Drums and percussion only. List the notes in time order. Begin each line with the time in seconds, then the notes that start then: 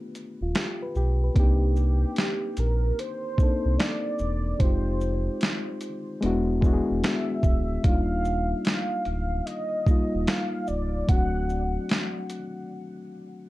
0.15 closed hi-hat, shaker
0.55 snare, closed hi-hat
0.95 shaker
1.36 kick, closed hi-hat
1.76 shaker
2.16 snare, closed hi-hat
2.57 closed hi-hat, shaker
2.99 closed hi-hat
3.38 kick, shaker
3.79 snare, closed hi-hat
4.19 shaker
4.60 kick, closed hi-hat
5.01 shaker
5.41 snare, closed hi-hat
5.81 closed hi-hat, shaker
6.22 closed hi-hat
6.62 kick, shaker
7.04 snare, closed hi-hat
7.43 kick, shaker
7.84 kick, closed hi-hat
8.25 shaker
8.65 snare, closed hi-hat
9.05 closed hi-hat, shaker
9.47 closed hi-hat
9.87 kick, shaker
10.28 snare, closed hi-hat
10.67 shaker
11.09 kick, closed hi-hat
11.49 shaker
11.89 snare, closed hi-hat
12.30 closed hi-hat, shaker